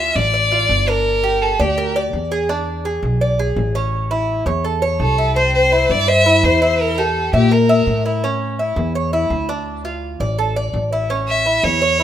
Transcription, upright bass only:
Already playing: D2
0.16 A1
0.69 G1
1.59 D2
2.13 E2
3.03 B1
3.56 A1
4.46 E2
5.00 C2
5.90 G2
6.43 E2
7.33 A#2
7.87 A2
8.76 E2
9.30 D2
10.20 A1
10.73 A1
11.63 E2

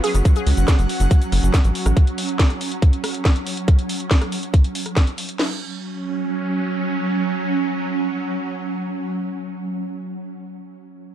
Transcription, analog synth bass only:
0.14 F#1
0.47 C#2
0.57 F#1
0.79 F#1
1.00 F#1
1.32 F#1
1.43 F#1
1.64 A1
1.86 A1

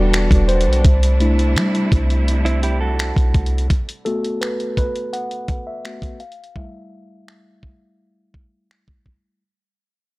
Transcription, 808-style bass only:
Already playing: E1
0.31 E1
0.67 B1
0.85 C2
1.56 G3
1.92 C2
3.17 B1
3.35 C2

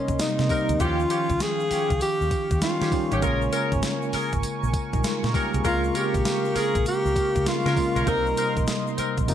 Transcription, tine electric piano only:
Already playing: C3 G3 A#3 D#4
0.19 C3 G3 A#3 D#4
0.50 C3 G3 A#3 D#4
0.80 D#3 F3 C#4 E4
0.88 F4
2.62 D#3 G3 C#4 D#4
2.92 D#3 G3 C#4 G4
3.22 C#3 G#3 A#3 F4
4.94 G3 D#4
5.04 G#3 F4
5.34 A#3 G4
5.54 C4 G#4
5.64 C#3 G#3 A#3 F4
7.46 C#3 G#3 A#3 F4
7.77 C#3 G#3 A#3 F4
8.07 C3 G3 A#3 D#4
9.28 C3 F3 A#3 D#4

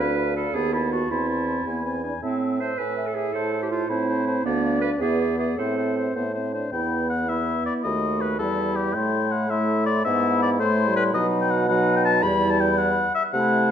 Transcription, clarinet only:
0.00 B4
0.36 A4
0.55 G#4
0.73 E4
0.92 F#4
1.11 E4
2.23 C4
2.60 C5
2.78 B4
3.07 A4
3.15 G#4
3.33 A4
3.62 G4
3.71 F4
3.89 E4
4.44 B3
4.81 B4
5.00 G#4
5.38 G#4
5.57 A4
6.74 E4
7.30 E4
7.84 F#4
8.40 E4
8.95 E4
9.50 E4
10.04 E4
10.60 E4
11.14 D#4
11.69 D#4
12.23 E4
13.34 E4

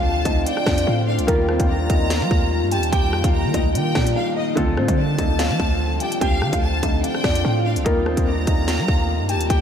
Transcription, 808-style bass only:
Already playing: D2
0.25 D2
0.67 F2
0.87 A2
1.19 C2
1.28 D#2
1.60 D#2
1.90 D#2
2.21 G3
2.31 D#2
2.62 G2
2.77 D#2
2.93 D#2
3.13 F2
3.24 D#2
3.45 D#3
3.54 D2
3.75 D#3
3.95 A#2
4.57 D2
4.77 A2
4.88 D3
5.19 D2
5.50 F3
5.60 D2
6.21 D2
6.42 D3
6.53 D2
6.83 D2
7.24 F2
7.45 A2
7.76 C2
7.86 D#2
8.17 D#2
8.47 D#2
8.79 G3
8.88 D#2
9.20 G2
9.35 D#2
9.50 D#2

